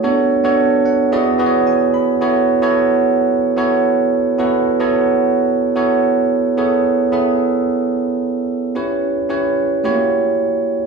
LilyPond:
\new Staff \with { instrumentName = "Tine electric piano" } { \time 4/4 \key a \major \tempo 4 = 110 << { r4. fis''8 e''8 fis''8 gis''8 b''8 | r1 | r1 | r1 |
r1 | } \\ { <b d' fis' a' cis''>8 r16 <b d' fis' a' cis''>4~ <b d' fis' a' cis''>16 <b e' fis' gis' d''>8 <b e' fis' gis' b' cis''>4 r8 | <b e' fis' a' cis''>8 r16 <b e' fis' a' cis''>4~ <b e' fis' a' cis''>16 r8 <b e' fis' a' cis''>4 r8 | <b e' fis' a' b'>8 r16 <b e' fis' a' cis''>4~ <b e' fis' a' cis''>16 r8 <b e' fis' a' cis''>4 r8 | <b e' gis' a' cis''>8. r16 <b e' gis' a' e''>4. r4. |
<cis' e' g' b' cis''>8. r16 <cis' e' g' b' cis''>4 <a ais e' fis' g' cis''>4. r8 | } >> }